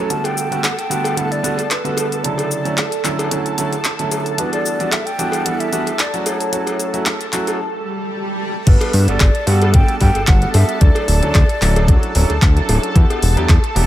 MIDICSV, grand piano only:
0, 0, Header, 1, 2, 480
1, 0, Start_track
1, 0, Tempo, 535714
1, 89, Time_signature, 4, 2, 24, 8
1, 12423, End_track
2, 0, Start_track
2, 0, Title_t, "Grand piano"
2, 0, Program_c, 0, 0
2, 85, Note_on_c, 0, 50, 69
2, 88, Note_on_c, 0, 55, 61
2, 90, Note_on_c, 0, 57, 61
2, 92, Note_on_c, 0, 59, 62
2, 95, Note_on_c, 0, 66, 75
2, 426, Note_off_c, 0, 50, 0
2, 427, Note_off_c, 0, 55, 0
2, 428, Note_off_c, 0, 57, 0
2, 429, Note_off_c, 0, 59, 0
2, 431, Note_off_c, 0, 66, 0
2, 454, Note_on_c, 0, 50, 74
2, 455, Note_on_c, 0, 55, 69
2, 457, Note_on_c, 0, 57, 67
2, 461, Note_on_c, 0, 59, 70
2, 464, Note_on_c, 0, 66, 84
2, 563, Note_off_c, 0, 50, 0
2, 563, Note_off_c, 0, 55, 0
2, 565, Note_off_c, 0, 57, 0
2, 566, Note_off_c, 0, 59, 0
2, 568, Note_off_c, 0, 66, 0
2, 802, Note_on_c, 0, 50, 81
2, 804, Note_on_c, 0, 55, 73
2, 807, Note_on_c, 0, 57, 74
2, 809, Note_on_c, 0, 59, 72
2, 811, Note_on_c, 0, 66, 89
2, 1019, Note_off_c, 0, 50, 0
2, 1020, Note_off_c, 0, 55, 0
2, 1021, Note_off_c, 0, 57, 0
2, 1023, Note_off_c, 0, 59, 0
2, 1023, Note_off_c, 0, 66, 0
2, 1039, Note_on_c, 0, 50, 77
2, 1043, Note_on_c, 0, 55, 73
2, 1044, Note_on_c, 0, 57, 71
2, 1048, Note_on_c, 0, 59, 70
2, 1048, Note_on_c, 0, 64, 83
2, 1235, Note_off_c, 0, 50, 0
2, 1237, Note_off_c, 0, 55, 0
2, 1238, Note_off_c, 0, 57, 0
2, 1239, Note_off_c, 0, 59, 0
2, 1240, Note_off_c, 0, 64, 0
2, 1280, Note_on_c, 0, 55, 76
2, 1281, Note_on_c, 0, 50, 82
2, 1283, Note_on_c, 0, 57, 73
2, 1286, Note_on_c, 0, 59, 76
2, 1289, Note_on_c, 0, 66, 92
2, 1411, Note_off_c, 0, 55, 0
2, 1412, Note_off_c, 0, 50, 0
2, 1413, Note_off_c, 0, 57, 0
2, 1414, Note_off_c, 0, 59, 0
2, 1415, Note_off_c, 0, 66, 0
2, 1649, Note_on_c, 0, 50, 68
2, 1649, Note_on_c, 0, 55, 62
2, 1651, Note_on_c, 0, 57, 62
2, 1655, Note_on_c, 0, 59, 61
2, 1656, Note_on_c, 0, 66, 75
2, 1977, Note_off_c, 0, 50, 0
2, 1977, Note_off_c, 0, 55, 0
2, 1978, Note_off_c, 0, 57, 0
2, 1980, Note_off_c, 0, 59, 0
2, 1981, Note_off_c, 0, 66, 0
2, 2004, Note_on_c, 0, 50, 70
2, 2007, Note_on_c, 0, 54, 65
2, 2009, Note_on_c, 0, 57, 62
2, 2013, Note_on_c, 0, 49, 63
2, 2013, Note_on_c, 0, 64, 74
2, 2345, Note_off_c, 0, 50, 0
2, 2347, Note_off_c, 0, 54, 0
2, 2348, Note_off_c, 0, 57, 0
2, 2350, Note_off_c, 0, 49, 0
2, 2350, Note_off_c, 0, 64, 0
2, 2372, Note_on_c, 0, 50, 75
2, 2376, Note_on_c, 0, 54, 69
2, 2377, Note_on_c, 0, 57, 67
2, 2380, Note_on_c, 0, 61, 70
2, 2381, Note_on_c, 0, 64, 82
2, 2482, Note_off_c, 0, 50, 0
2, 2484, Note_off_c, 0, 54, 0
2, 2485, Note_off_c, 0, 57, 0
2, 2486, Note_off_c, 0, 61, 0
2, 2486, Note_off_c, 0, 64, 0
2, 2723, Note_on_c, 0, 50, 79
2, 2727, Note_on_c, 0, 54, 77
2, 2727, Note_on_c, 0, 57, 75
2, 2730, Note_on_c, 0, 61, 72
2, 2732, Note_on_c, 0, 64, 89
2, 2939, Note_off_c, 0, 50, 0
2, 2941, Note_off_c, 0, 54, 0
2, 2941, Note_off_c, 0, 57, 0
2, 2943, Note_off_c, 0, 61, 0
2, 2944, Note_off_c, 0, 64, 0
2, 2963, Note_on_c, 0, 50, 78
2, 2967, Note_on_c, 0, 54, 72
2, 2969, Note_on_c, 0, 57, 72
2, 2972, Note_on_c, 0, 64, 87
2, 2973, Note_on_c, 0, 61, 74
2, 3157, Note_off_c, 0, 50, 0
2, 3159, Note_off_c, 0, 54, 0
2, 3160, Note_off_c, 0, 57, 0
2, 3162, Note_off_c, 0, 61, 0
2, 3162, Note_off_c, 0, 64, 0
2, 3208, Note_on_c, 0, 50, 84
2, 3208, Note_on_c, 0, 54, 75
2, 3212, Note_on_c, 0, 57, 75
2, 3212, Note_on_c, 0, 61, 75
2, 3214, Note_on_c, 0, 64, 91
2, 3335, Note_off_c, 0, 50, 0
2, 3335, Note_off_c, 0, 54, 0
2, 3337, Note_off_c, 0, 57, 0
2, 3337, Note_off_c, 0, 61, 0
2, 3338, Note_off_c, 0, 64, 0
2, 3575, Note_on_c, 0, 50, 68
2, 3578, Note_on_c, 0, 54, 62
2, 3580, Note_on_c, 0, 57, 63
2, 3583, Note_on_c, 0, 61, 64
2, 3586, Note_on_c, 0, 64, 78
2, 3900, Note_off_c, 0, 50, 0
2, 3902, Note_off_c, 0, 54, 0
2, 3903, Note_off_c, 0, 57, 0
2, 3904, Note_off_c, 0, 61, 0
2, 3906, Note_off_c, 0, 64, 0
2, 3918, Note_on_c, 0, 52, 70
2, 3919, Note_on_c, 0, 55, 62
2, 3924, Note_on_c, 0, 59, 64
2, 3927, Note_on_c, 0, 62, 64
2, 3928, Note_on_c, 0, 66, 76
2, 4262, Note_off_c, 0, 52, 0
2, 4263, Note_off_c, 0, 55, 0
2, 4266, Note_off_c, 0, 59, 0
2, 4267, Note_off_c, 0, 62, 0
2, 4267, Note_off_c, 0, 66, 0
2, 4290, Note_on_c, 0, 52, 75
2, 4294, Note_on_c, 0, 55, 69
2, 4297, Note_on_c, 0, 59, 69
2, 4300, Note_on_c, 0, 62, 68
2, 4300, Note_on_c, 0, 66, 84
2, 4401, Note_off_c, 0, 52, 0
2, 4403, Note_off_c, 0, 55, 0
2, 4404, Note_off_c, 0, 59, 0
2, 4406, Note_off_c, 0, 62, 0
2, 4406, Note_off_c, 0, 66, 0
2, 4641, Note_on_c, 0, 52, 82
2, 4644, Note_on_c, 0, 55, 73
2, 4647, Note_on_c, 0, 59, 74
2, 4648, Note_on_c, 0, 62, 73
2, 4651, Note_on_c, 0, 66, 92
2, 4859, Note_off_c, 0, 52, 0
2, 4860, Note_off_c, 0, 55, 0
2, 4862, Note_off_c, 0, 59, 0
2, 4862, Note_off_c, 0, 62, 0
2, 4863, Note_off_c, 0, 66, 0
2, 4883, Note_on_c, 0, 52, 79
2, 4886, Note_on_c, 0, 55, 69
2, 4888, Note_on_c, 0, 59, 71
2, 4890, Note_on_c, 0, 64, 84
2, 4891, Note_on_c, 0, 62, 72
2, 5077, Note_off_c, 0, 52, 0
2, 5078, Note_off_c, 0, 55, 0
2, 5079, Note_off_c, 0, 59, 0
2, 5081, Note_off_c, 0, 62, 0
2, 5081, Note_off_c, 0, 64, 0
2, 5121, Note_on_c, 0, 52, 81
2, 5126, Note_on_c, 0, 55, 76
2, 5128, Note_on_c, 0, 59, 76
2, 5128, Note_on_c, 0, 62, 75
2, 5132, Note_on_c, 0, 66, 93
2, 5252, Note_off_c, 0, 52, 0
2, 5254, Note_off_c, 0, 55, 0
2, 5255, Note_off_c, 0, 59, 0
2, 5255, Note_off_c, 0, 62, 0
2, 5257, Note_off_c, 0, 66, 0
2, 5495, Note_on_c, 0, 54, 69
2, 5496, Note_on_c, 0, 57, 62
2, 5500, Note_on_c, 0, 61, 62
2, 5501, Note_on_c, 0, 64, 63
2, 5504, Note_on_c, 0, 66, 78
2, 5820, Note_off_c, 0, 54, 0
2, 5821, Note_off_c, 0, 57, 0
2, 5823, Note_off_c, 0, 61, 0
2, 5823, Note_off_c, 0, 64, 0
2, 5825, Note_off_c, 0, 66, 0
2, 5840, Note_on_c, 0, 54, 70
2, 5840, Note_on_c, 0, 57, 64
2, 5843, Note_on_c, 0, 61, 65
2, 5844, Note_on_c, 0, 64, 62
2, 5849, Note_on_c, 0, 66, 80
2, 6184, Note_off_c, 0, 54, 0
2, 6184, Note_off_c, 0, 57, 0
2, 6185, Note_off_c, 0, 61, 0
2, 6185, Note_off_c, 0, 64, 0
2, 6188, Note_off_c, 0, 66, 0
2, 6210, Note_on_c, 0, 54, 74
2, 6211, Note_on_c, 0, 57, 70
2, 6215, Note_on_c, 0, 61, 68
2, 6217, Note_on_c, 0, 64, 70
2, 6218, Note_on_c, 0, 66, 85
2, 6321, Note_off_c, 0, 54, 0
2, 6321, Note_off_c, 0, 57, 0
2, 6324, Note_off_c, 0, 61, 0
2, 6324, Note_off_c, 0, 64, 0
2, 6325, Note_off_c, 0, 66, 0
2, 6563, Note_on_c, 0, 54, 80
2, 6563, Note_on_c, 0, 57, 76
2, 6565, Note_on_c, 0, 61, 75
2, 6568, Note_on_c, 0, 64, 73
2, 6572, Note_on_c, 0, 66, 91
2, 6779, Note_off_c, 0, 54, 0
2, 6780, Note_off_c, 0, 57, 0
2, 6780, Note_off_c, 0, 61, 0
2, 6782, Note_off_c, 0, 64, 0
2, 6784, Note_off_c, 0, 66, 0
2, 7762, Note_on_c, 0, 55, 75
2, 7765, Note_on_c, 0, 59, 71
2, 7767, Note_on_c, 0, 62, 68
2, 7769, Note_on_c, 0, 66, 70
2, 7769, Note_on_c, 0, 69, 86
2, 8104, Note_off_c, 0, 55, 0
2, 8106, Note_off_c, 0, 59, 0
2, 8107, Note_off_c, 0, 62, 0
2, 8108, Note_off_c, 0, 66, 0
2, 8108, Note_off_c, 0, 69, 0
2, 8138, Note_on_c, 0, 55, 83
2, 8142, Note_on_c, 0, 59, 74
2, 8142, Note_on_c, 0, 62, 72
2, 8143, Note_on_c, 0, 66, 75
2, 8146, Note_on_c, 0, 69, 92
2, 8245, Note_off_c, 0, 55, 0
2, 8247, Note_off_c, 0, 59, 0
2, 8247, Note_off_c, 0, 62, 0
2, 8248, Note_off_c, 0, 66, 0
2, 8249, Note_off_c, 0, 69, 0
2, 8482, Note_on_c, 0, 59, 83
2, 8483, Note_on_c, 0, 55, 91
2, 8485, Note_on_c, 0, 62, 85
2, 8490, Note_on_c, 0, 66, 80
2, 8491, Note_on_c, 0, 69, 96
2, 8699, Note_off_c, 0, 55, 0
2, 8699, Note_off_c, 0, 59, 0
2, 8700, Note_off_c, 0, 62, 0
2, 8703, Note_off_c, 0, 66, 0
2, 8704, Note_off_c, 0, 69, 0
2, 8721, Note_on_c, 0, 55, 85
2, 8724, Note_on_c, 0, 59, 79
2, 8726, Note_on_c, 0, 62, 77
2, 8730, Note_on_c, 0, 66, 78
2, 8730, Note_on_c, 0, 69, 94
2, 8916, Note_off_c, 0, 55, 0
2, 8918, Note_off_c, 0, 59, 0
2, 8919, Note_off_c, 0, 62, 0
2, 8921, Note_off_c, 0, 66, 0
2, 8921, Note_off_c, 0, 69, 0
2, 8962, Note_on_c, 0, 55, 92
2, 8963, Note_on_c, 0, 59, 85
2, 8966, Note_on_c, 0, 62, 84
2, 8970, Note_on_c, 0, 66, 85
2, 8972, Note_on_c, 0, 69, 104
2, 9092, Note_off_c, 0, 55, 0
2, 9093, Note_off_c, 0, 59, 0
2, 9094, Note_off_c, 0, 62, 0
2, 9096, Note_off_c, 0, 66, 0
2, 9097, Note_off_c, 0, 69, 0
2, 9332, Note_on_c, 0, 55, 75
2, 9336, Note_on_c, 0, 59, 70
2, 9336, Note_on_c, 0, 62, 69
2, 9339, Note_on_c, 0, 66, 67
2, 9342, Note_on_c, 0, 69, 85
2, 9659, Note_off_c, 0, 55, 0
2, 9661, Note_off_c, 0, 59, 0
2, 9661, Note_off_c, 0, 62, 0
2, 9662, Note_off_c, 0, 66, 0
2, 9663, Note_off_c, 0, 69, 0
2, 9684, Note_on_c, 0, 54, 75
2, 9684, Note_on_c, 0, 57, 72
2, 9687, Note_on_c, 0, 62, 72
2, 9689, Note_on_c, 0, 64, 70
2, 9690, Note_on_c, 0, 69, 87
2, 10026, Note_off_c, 0, 54, 0
2, 10026, Note_off_c, 0, 57, 0
2, 10027, Note_off_c, 0, 62, 0
2, 10028, Note_off_c, 0, 64, 0
2, 10028, Note_off_c, 0, 69, 0
2, 10054, Note_on_c, 0, 54, 82
2, 10057, Note_on_c, 0, 61, 77
2, 10058, Note_on_c, 0, 62, 74
2, 10060, Note_on_c, 0, 64, 78
2, 10062, Note_on_c, 0, 69, 88
2, 10163, Note_off_c, 0, 54, 0
2, 10165, Note_off_c, 0, 61, 0
2, 10165, Note_off_c, 0, 62, 0
2, 10166, Note_off_c, 0, 64, 0
2, 10167, Note_off_c, 0, 69, 0
2, 10404, Note_on_c, 0, 54, 90
2, 10407, Note_on_c, 0, 61, 82
2, 10409, Note_on_c, 0, 62, 84
2, 10410, Note_on_c, 0, 64, 83
2, 10413, Note_on_c, 0, 69, 100
2, 10620, Note_off_c, 0, 54, 0
2, 10621, Note_off_c, 0, 61, 0
2, 10622, Note_off_c, 0, 62, 0
2, 10623, Note_off_c, 0, 64, 0
2, 10624, Note_off_c, 0, 69, 0
2, 10643, Note_on_c, 0, 54, 89
2, 10648, Note_on_c, 0, 61, 82
2, 10648, Note_on_c, 0, 62, 83
2, 10651, Note_on_c, 0, 64, 77
2, 10655, Note_on_c, 0, 66, 96
2, 10837, Note_off_c, 0, 54, 0
2, 10839, Note_off_c, 0, 61, 0
2, 10840, Note_off_c, 0, 62, 0
2, 10841, Note_off_c, 0, 64, 0
2, 10843, Note_off_c, 0, 66, 0
2, 10888, Note_on_c, 0, 54, 92
2, 10892, Note_on_c, 0, 61, 87
2, 10892, Note_on_c, 0, 62, 82
2, 10894, Note_on_c, 0, 64, 84
2, 10898, Note_on_c, 0, 69, 101
2, 11015, Note_off_c, 0, 54, 0
2, 11017, Note_off_c, 0, 61, 0
2, 11017, Note_off_c, 0, 62, 0
2, 11018, Note_off_c, 0, 64, 0
2, 11020, Note_off_c, 0, 69, 0
2, 11257, Note_on_c, 0, 54, 75
2, 11258, Note_on_c, 0, 61, 70
2, 11262, Note_on_c, 0, 62, 69
2, 11263, Note_on_c, 0, 64, 69
2, 11266, Note_on_c, 0, 69, 84
2, 11581, Note_off_c, 0, 54, 0
2, 11582, Note_off_c, 0, 61, 0
2, 11584, Note_off_c, 0, 62, 0
2, 11584, Note_off_c, 0, 64, 0
2, 11586, Note_off_c, 0, 69, 0
2, 11604, Note_on_c, 0, 66, 76
2, 11605, Note_on_c, 0, 59, 71
2, 11609, Note_on_c, 0, 62, 70
2, 11611, Note_on_c, 0, 64, 70
2, 11613, Note_on_c, 0, 67, 87
2, 11946, Note_off_c, 0, 59, 0
2, 11946, Note_off_c, 0, 66, 0
2, 11948, Note_off_c, 0, 62, 0
2, 11949, Note_off_c, 0, 64, 0
2, 11950, Note_off_c, 0, 67, 0
2, 11973, Note_on_c, 0, 54, 82
2, 11975, Note_on_c, 0, 59, 76
2, 11979, Note_on_c, 0, 62, 78
2, 11980, Note_on_c, 0, 64, 79
2, 11984, Note_on_c, 0, 67, 94
2, 12083, Note_off_c, 0, 54, 0
2, 12084, Note_off_c, 0, 59, 0
2, 12085, Note_off_c, 0, 62, 0
2, 12086, Note_off_c, 0, 64, 0
2, 12088, Note_off_c, 0, 67, 0
2, 12320, Note_on_c, 0, 59, 84
2, 12321, Note_on_c, 0, 54, 91
2, 12324, Note_on_c, 0, 62, 85
2, 12324, Note_on_c, 0, 64, 82
2, 12329, Note_on_c, 0, 67, 100
2, 12423, Note_off_c, 0, 54, 0
2, 12423, Note_off_c, 0, 59, 0
2, 12423, Note_off_c, 0, 62, 0
2, 12423, Note_off_c, 0, 64, 0
2, 12423, Note_off_c, 0, 67, 0
2, 12423, End_track
0, 0, End_of_file